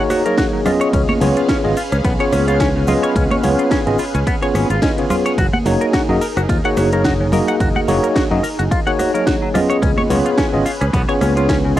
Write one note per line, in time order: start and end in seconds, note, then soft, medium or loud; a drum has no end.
0.00 0.22 A#3 medium
0.00 0.23 D#4 medium
0.00 0.62 D#4 medium
0.00 0.23 F#4 medium
0.00 0.23 G#4 medium
0.00 0.62 G#4 medium
0.00 0.62 A#4 medium
0.00 0.23 C#5 loud
0.10 0.22 F#4 medium
0.10 cross-stick medium
0.10 open hi-hat loud
0.10 high conga medium
0.10 cabasa medium
0.25 0.63 F#3 medium
0.25 0.63 A#3 medium
0.25 0.63 D#4 medium
0.25 0.63 G#4 medium
0.25 0.35 A#4 medium
0.25 0.63 C#5 medium
0.25 closed hi-hat medium
0.25 cabasa medium
0.38 0.46 F#4 loud
0.38 kick loud
0.38 snare loud
0.38 closed hi-hat medium
0.38 ride medium
0.38 cabasa soft
0.53 0.59 F#3 medium
0.65 1.18 B3 loud
0.65 1.18 C#4 medium
0.65 5.34 C#4 medium
0.65 1.18 F4 medium
0.65 0.70 F4 medium
0.65 1.18 G#4 medium
0.65 9.51 G#4 medium
0.65 5.34 B4 medium
0.65 1.18 D#5 loud
0.65 5.34 F5 medium
0.65 cross-stick medium
0.65 open hi-hat loud
0.65 low conga loud
0.65 cabasa medium
0.81 0.87 C#5 loud
0.81 closed hi-hat medium
0.81 cabasa medium
0.93 1.04 C#2 loud
0.93 1.01 C#4 medium
0.93 kick loud
0.93 closed hi-hat medium
0.93 ride medium
0.93 cabasa soft
1.09 1.13 C#5 loud
1.09 high conga loud
1.20 1.31 C#2 loud
1.20 1.29 C#3 medium
1.20 1.60 B3 medium
1.20 1.61 C#4 medium
1.20 1.61 F4 medium
1.20 1.61 G#4 medium
1.20 1.61 C#5 loud
1.20 open hi-hat loud
1.20 low conga medium
1.20 cabasa medium
1.37 1.41 F4 medium
1.37 closed hi-hat medium
1.37 cabasa soft
1.49 1.57 C#4 loud
1.49 kick loud
1.49 snare loud
1.49 closed hi-hat medium
1.49 ride medium
1.49 cabasa soft
1.64 1.73 G#1 medium
1.64 1.71 C#3 medium
1.64 1.74 B3 loud
1.64 1.75 C#4 medium
1.64 1.75 F4 medium
1.64 1.75 G#4 medium
1.64 1.75 D#5 loud
1.77 1.82 F4 medium
1.77 open hi-hat loud
1.77 cabasa medium
1.92 2.00 C#2 loud
1.92 1.96 C#4 medium
1.92 cross-stick medium
1.92 closed hi-hat medium
1.92 cabasa medium
2.04 2.15 B1 loud
2.04 2.12 B3 medium
2.04 kick loud
2.04 closed hi-hat medium
2.04 ride medium
2.04 cabasa soft
2.19 2.44 B3 medium
2.19 2.45 C#4 medium
2.19 2.45 F4 medium
2.19 2.45 G#4 medium
2.19 2.24 C#5 loud
2.19 2.45 C#5 loud
2.19 closed hi-hat soft
2.32 2.95 C#2 medium
2.32 2.44 C#4 medium
2.32 cross-stick medium
2.32 open hi-hat loud
2.32 high conga medium
2.32 cabasa loud
2.47 2.85 B3 medium
2.47 2.85 C#4 medium
2.47 2.85 F4 medium
2.47 2.57 F4 medium
2.47 2.85 G#4 medium
2.47 2.85 C#5 medium
2.47 closed hi-hat medium
2.47 cabasa soft
2.60 2.68 C#4 loud
2.60 kick loud
2.60 snare loud
2.60 closed hi-hat medium
2.60 ride medium
2.60 cabasa soft
2.76 2.82 C#3 medium
2.87 3.40 B3 loud
2.87 3.40 C#4 medium
2.87 3.40 F4 medium
2.87 2.93 F4 medium
2.87 3.41 G#4 medium
2.87 3.41 D#5 loud
2.87 open hi-hat loud
2.87 low conga medium
2.87 cabasa loud
3.03 3.10 C#5 loud
3.03 closed hi-hat medium
3.03 cabasa medium
3.16 3.26 C#2 loud
3.16 3.24 C#4 medium
3.16 kick loud
3.16 closed hi-hat medium
3.16 ride medium
3.16 cabasa soft
3.31 3.35 C#5 loud
3.31 closed hi-hat soft
3.31 high conga medium
3.43 3.54 C#2 loud
3.43 3.51 C#3 medium
3.43 3.83 B3 medium
3.43 3.83 C#4 medium
3.43 3.83 F4 medium
3.43 3.83 G#4 medium
3.43 3.83 C#5 loud
3.43 open hi-hat loud
3.43 low conga medium
3.43 cabasa medium
3.59 3.63 F4 medium
3.59 closed hi-hat medium
3.59 cabasa medium
3.71 3.79 C#4 loud
3.71 kick loud
3.71 snare loud
3.71 closed hi-hat medium
3.71 ride medium
3.71 cabasa soft
3.86 3.95 G#1 medium
3.86 3.93 C#3 medium
3.86 3.97 B3 loud
3.86 3.97 C#4 medium
3.86 3.97 F4 medium
3.86 3.97 G#4 medium
3.86 3.97 D#5 loud
3.86 closed hi-hat soft
3.99 4.04 F4 medium
3.99 muted fingered electric bass stroke soft
3.99 open hi-hat loud
3.99 cabasa medium
4.15 4.23 C#2 loud
4.15 4.18 C#4 medium
4.15 closed hi-hat medium
4.15 cabasa medium
4.27 4.35 B3 medium
4.27 kick loud
4.27 closed hi-hat medium
4.27 ride medium
4.27 cabasa soft
4.42 4.67 B3 medium
4.42 4.67 C#4 medium
4.42 4.67 F4 medium
4.42 4.67 G#4 medium
4.42 4.46 C#5 loud
4.42 4.67 C#5 loud
4.42 muted fingered electric bass stroke soft
4.42 closed hi-hat soft
4.54 4.65 G#1 medium
4.54 4.66 C#4 medium
4.54 cross-stick medium
4.54 open hi-hat loud
4.54 high conga medium
4.54 cabasa medium
4.70 4.78 G#1 medium
4.70 4.79 F4 medium
4.70 closed hi-hat medium
4.70 cabasa medium
4.82 4.95 B3 medium
4.82 4.96 C#4 medium
4.82 4.90 C#4 loud
4.82 4.96 F4 medium
4.82 4.96 G#4 medium
4.82 4.96 D#5 medium
4.82 kick loud
4.82 snare loud
4.82 closed hi-hat medium
4.82 ride medium
4.82 cabasa soft
4.98 5.04 C#3 medium
4.98 5.37 B3 medium
4.98 5.37 C#4 medium
4.98 5.37 F4 medium
4.98 5.37 G#4 medium
4.98 5.37 C#5 medium
4.98 closed hi-hat soft
5.10 5.15 F4 medium
5.10 cross-stick medium
5.10 open hi-hat loud
5.10 low conga medium
5.10 cabasa loud
5.26 5.32 C#5 loud
5.26 closed hi-hat medium
5.26 cabasa medium
5.38 5.48 F#1 loud
5.38 9.51 D#4 medium
5.38 5.46 F#4 medium
5.38 9.51 A#4 medium
5.38 kick loud
5.38 closed hi-hat medium
5.38 ride medium
5.38 cabasa soft
5.53 5.57 F#5 loud
5.53 high conga loud
5.65 5.76 F#1 loud
5.65 5.73 F#3 medium
5.65 6.05 A#3 medium
5.65 6.05 D#4 medium
5.65 6.05 F#4 medium
5.65 6.06 G#4 medium
5.65 6.06 C#5 loud
5.65 open hi-hat loud
5.65 low conga medium
5.65 cabasa loud
5.81 5.85 A#4 medium
5.81 closed hi-hat medium
5.81 cabasa medium
5.93 6.01 F#4 loud
5.93 kick loud
5.93 snare loud
5.93 closed hi-hat medium
5.93 ride medium
5.93 cabasa soft
6.09 6.17 F#2 medium
6.09 6.15 F#3 medium
6.09 6.19 A#3 medium
6.09 6.19 D#4 medium
6.09 6.20 F#4 medium
6.09 6.20 G#4 medium
6.09 6.20 D#5 loud
6.21 6.26 A#4 medium
6.21 muted fingered electric bass stroke soft
6.21 open hi-hat loud
6.21 cabasa loud
6.37 6.45 F#1 loud
6.37 6.41 F#4 medium
6.37 cross-stick medium
6.37 closed hi-hat medium
6.37 cabasa medium
6.49 6.59 D#2 medium
6.49 6.57 F4 medium
6.49 kick loud
6.49 closed hi-hat medium
6.49 ride medium
6.49 cabasa soft
6.64 6.89 A#3 medium
6.64 6.89 D#4 medium
6.64 6.89 F#4 medium
6.64 6.90 G#4 medium
6.64 6.90 C#5 loud
6.64 6.68 F#5 loud
6.64 closed hi-hat soft
6.77 7.39 F#1 medium
6.77 6.89 F#4 medium
6.77 cross-stick medium
6.77 open hi-hat loud
6.77 high conga medium
6.77 cabasa loud
6.92 7.30 F#3 medium
6.92 7.30 A#3 medium
6.92 7.30 D#4 medium
6.92 7.30 G#4 medium
6.92 7.02 A#4 medium
6.92 7.30 C#5 medium
6.92 closed hi-hat medium
6.92 cabasa soft
7.04 7.13 F#4 loud
7.04 kick loud
7.04 snare loud
7.04 closed hi-hat medium
7.04 ride medium
7.04 cabasa soft
7.20 7.26 F#3 medium
7.32 7.85 A#3 loud
7.32 7.85 D#4 medium
7.32 7.85 F#4 medium
7.32 7.85 G#4 medium
7.32 7.37 A#4 medium
7.32 7.85 D#5 loud
7.32 open hi-hat loud
7.32 low conga loud
7.32 cabasa loud
7.48 7.54 F#5 loud
7.48 closed hi-hat medium
7.48 cabasa medium
7.60 7.70 F#1 loud
7.60 7.68 F#4 medium
7.60 kick loud
7.60 closed hi-hat medium
7.60 ride medium
7.60 cabasa soft
7.76 7.80 F#5 loud
7.76 high conga medium
7.88 7.98 F#1 loud
7.88 7.96 F#3 medium
7.88 8.27 A#3 medium
7.88 8.27 D#4 medium
7.88 8.28 F#4 medium
7.88 8.28 G#4 medium
7.88 8.28 C#5 loud
7.88 open hi-hat loud
7.88 low conga medium
7.88 cabasa loud
8.03 8.07 A#4 medium
8.03 closed hi-hat medium
8.03 cabasa medium
8.16 8.23 F#4 loud
8.16 kick loud
8.16 snare loud
8.16 closed hi-hat medium
8.16 ride medium
8.16 cabasa soft
8.31 8.39 F#2 medium
8.31 8.37 F#3 medium
8.31 8.41 A#3 medium
8.31 8.41 D#4 medium
8.31 8.41 F#4 medium
8.31 8.42 G#4 medium
8.31 8.42 D#5 loud
8.43 8.48 A#4 medium
8.43 muted fingered electric bass stroke soft
8.43 open hi-hat loud
8.43 cabasa loud
8.59 8.67 F#1 medium
8.59 8.63 F#4 medium
8.59 closed hi-hat medium
8.59 cabasa medium
8.71 8.79 F4 medium
8.71 kick loud
8.71 closed hi-hat medium
8.71 ride medium
8.71 cabasa soft
8.86 9.11 A#3 medium
8.86 9.11 D#4 medium
8.86 9.12 F#4 medium
8.86 9.12 G#4 medium
8.86 9.12 C#5 loud
8.86 8.91 F#5 loud
8.86 closed hi-hat soft
8.99 9.11 F#4 medium
8.99 cross-stick medium
8.99 open hi-hat loud
8.99 high conga medium
8.99 cabasa loud
9.14 9.52 F#3 medium
9.14 9.51 A#3 medium
9.14 9.52 D#4 medium
9.14 9.52 G#4 medium
9.14 9.24 A#4 medium
9.14 9.52 C#5 medium
9.14 closed hi-hat medium
9.14 cabasa soft
9.27 9.35 F#4 loud
9.27 kick loud
9.27 snare loud
9.27 closed hi-hat medium
9.27 ride medium
9.27 cabasa soft
9.42 9.48 F#3 medium
9.54 10.07 B3 loud
9.54 10.07 C#4 medium
9.54 11.80 C#4 medium
9.54 9.59 F4 medium
9.54 10.07 F4 medium
9.54 10.07 G#4 medium
9.54 11.80 G#4 medium
9.54 11.75 B4 medium
9.54 10.07 D#5 loud
9.54 cross-stick medium
9.54 open hi-hat loud
9.54 low conga loud
9.54 cabasa loud
9.70 9.76 C#5 loud
9.70 closed hi-hat medium
9.70 cabasa medium
9.82 9.93 C#2 loud
9.82 9.90 C#4 medium
9.82 kick loud
9.82 closed hi-hat medium
9.82 ride medium
9.82 cabasa soft
9.98 10.01 C#5 loud
9.98 high conga loud
10.10 10.20 C#2 loud
10.10 10.18 C#3 medium
10.10 10.49 B3 loud
10.10 10.50 C#4 medium
10.10 10.50 F4 medium
10.10 10.50 G#4 medium
10.10 10.50 C#5 loud
10.10 open hi-hat loud
10.10 low conga medium
10.10 cabasa loud
10.26 10.29 F4 medium
10.26 closed hi-hat medium
10.26 cabasa soft
10.38 10.46 C#4 loud
10.38 kick loud
10.38 snare loud
10.38 closed hi-hat medium
10.38 ride medium
10.38 cabasa soft
10.53 10.62 G#1 medium
10.53 10.59 C#3 medium
10.53 10.63 B3 loud
10.53 10.63 C#4 medium
10.53 10.64 F4 medium
10.53 10.64 G#4 medium
10.53 10.64 D#5 loud
10.66 10.70 F4 medium
10.66 muted fingered electric bass stroke soft
10.66 open hi-hat loud
10.66 cabasa medium
10.81 10.89 C#2 loud
10.81 10.85 C#4 medium
10.81 cross-stick medium
10.81 closed hi-hat medium
10.81 cabasa medium
10.93 11.04 B1 medium
10.93 11.01 B3 medium
10.93 kick loud
10.93 closed hi-hat medium
10.93 ride medium
10.93 cabasa soft
11.08 11.33 B3 loud
11.08 11.33 C#4 medium
11.08 11.34 F4 medium
11.08 11.34 G#4 medium
11.08 11.13 C#5 loud
11.08 11.34 C#5 loud
11.08 closed hi-hat soft
11.21 11.80 C#2 medium
11.21 11.33 C#4 medium
11.21 cross-stick medium
11.21 open hi-hat loud
11.21 high conga medium
11.21 cabasa medium
11.36 11.73 B3 medium
11.36 11.74 C#4 medium
11.36 11.74 F4 medium
11.36 11.46 F4 medium
11.36 11.74 G#4 medium
11.36 11.74 C#5 medium
11.36 closed hi-hat medium
11.36 cabasa soft
11.49 11.57 C#4 loud
11.49 kick loud
11.49 snare loud
11.49 closed hi-hat medium
11.49 ride medium
11.49 cabasa soft
11.65 11.71 C#3 medium
11.76 11.80 B3 loud
11.76 11.80 C#4 medium
11.76 11.80 F4 medium